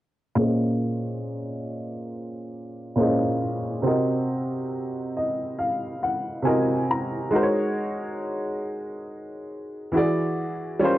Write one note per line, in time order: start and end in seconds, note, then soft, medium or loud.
0.35 1.49 A#2 medium
0.35 1.50 A#3 medium
0.35 1.50 C#4 medium
0.35 1.51 G#4 medium
0.40 1.51 C5 medium
0.40 1.52 D#5 medium
2.96 3.54 A#2 medium
2.96 3.54 A#3 medium
2.96 3.55 C#4 medium
2.96 3.55 G#4 medium
3.00 3.56 C5 medium
3.00 3.56 D#5 medium
3.82 4.96 C3 medium
3.82 4.97 C4 medium
3.82 4.98 F#4 medium
3.86 4.98 A#4 medium
3.86 4.99 D#5 medium
5.17 5.57 D#5 medium
5.59 6.00 F5 medium
6.03 6.44 F#5 medium
6.42 7.01 C3 medium
6.42 7.01 C4 medium
6.42 7.02 F#4 medium
6.42 6.86 G#5 medium
6.46 7.03 A#4 medium
6.46 7.03 D#5 medium
6.91 7.31 A#5 medium
7.31 8.45 G#3 medium
7.31 8.45 D#4 medium
7.31 8.46 F#4 medium
7.35 8.47 A#4 medium
7.35 7.42 C5 medium
7.43 8.51 C#5 medium
9.92 10.49 E3 medium
9.92 10.50 E4 medium
9.92 10.51 F#4 medium
9.92 10.51 G#4 medium
9.97 10.52 D5 medium
10.79 10.98 G3 medium
10.79 10.98 C#4 medium
10.79 10.98 F4 medium
10.79 10.98 A#4 medium
10.84 10.98 C5 medium